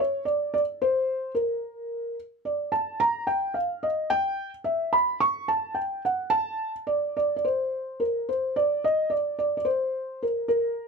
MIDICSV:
0, 0, Header, 1, 2, 480
1, 0, Start_track
1, 0, Tempo, 552995
1, 202, Time_signature, 2, 2, 24, 8
1, 9442, End_track
2, 0, Start_track
2, 0, Title_t, "Felt piano"
2, 0, Program_c, 0, 0
2, 0, Note_on_c, 0, 73, 79
2, 198, Note_off_c, 0, 73, 0
2, 219, Note_on_c, 0, 74, 75
2, 453, Note_off_c, 0, 74, 0
2, 466, Note_on_c, 0, 74, 87
2, 516, Note_off_c, 0, 74, 0
2, 708, Note_on_c, 0, 72, 88
2, 1136, Note_off_c, 0, 72, 0
2, 1169, Note_on_c, 0, 70, 70
2, 1859, Note_off_c, 0, 70, 0
2, 2128, Note_on_c, 0, 74, 56
2, 2359, Note_off_c, 0, 74, 0
2, 2360, Note_on_c, 0, 81, 85
2, 2585, Note_off_c, 0, 81, 0
2, 2604, Note_on_c, 0, 82, 96
2, 2838, Note_off_c, 0, 82, 0
2, 2838, Note_on_c, 0, 79, 83
2, 3074, Note_on_c, 0, 77, 62
2, 3091, Note_off_c, 0, 79, 0
2, 3323, Note_on_c, 0, 75, 74
2, 3341, Note_off_c, 0, 77, 0
2, 3559, Note_on_c, 0, 79, 98
2, 3572, Note_off_c, 0, 75, 0
2, 3900, Note_off_c, 0, 79, 0
2, 4031, Note_on_c, 0, 76, 78
2, 4276, Note_on_c, 0, 83, 88
2, 4290, Note_off_c, 0, 76, 0
2, 4496, Note_off_c, 0, 83, 0
2, 4518, Note_on_c, 0, 85, 99
2, 4746, Note_off_c, 0, 85, 0
2, 4759, Note_on_c, 0, 81, 88
2, 4987, Note_on_c, 0, 79, 70
2, 5000, Note_off_c, 0, 81, 0
2, 5222, Note_off_c, 0, 79, 0
2, 5251, Note_on_c, 0, 78, 74
2, 5466, Note_off_c, 0, 78, 0
2, 5468, Note_on_c, 0, 81, 104
2, 5819, Note_off_c, 0, 81, 0
2, 5962, Note_on_c, 0, 74, 74
2, 6207, Note_off_c, 0, 74, 0
2, 6220, Note_on_c, 0, 74, 78
2, 6379, Note_off_c, 0, 74, 0
2, 6392, Note_on_c, 0, 74, 59
2, 6456, Note_off_c, 0, 74, 0
2, 6463, Note_on_c, 0, 72, 82
2, 6942, Note_on_c, 0, 70, 68
2, 6959, Note_off_c, 0, 72, 0
2, 7193, Note_on_c, 0, 72, 73
2, 7196, Note_off_c, 0, 70, 0
2, 7429, Note_off_c, 0, 72, 0
2, 7432, Note_on_c, 0, 74, 84
2, 7654, Note_off_c, 0, 74, 0
2, 7677, Note_on_c, 0, 75, 84
2, 7898, Note_on_c, 0, 74, 72
2, 7907, Note_off_c, 0, 75, 0
2, 8123, Note_off_c, 0, 74, 0
2, 8147, Note_on_c, 0, 74, 74
2, 8295, Note_off_c, 0, 74, 0
2, 8308, Note_on_c, 0, 74, 61
2, 8367, Note_off_c, 0, 74, 0
2, 8375, Note_on_c, 0, 72, 84
2, 8864, Note_off_c, 0, 72, 0
2, 8876, Note_on_c, 0, 70, 58
2, 9087, Note_off_c, 0, 70, 0
2, 9100, Note_on_c, 0, 70, 86
2, 9442, Note_off_c, 0, 70, 0
2, 9442, End_track
0, 0, End_of_file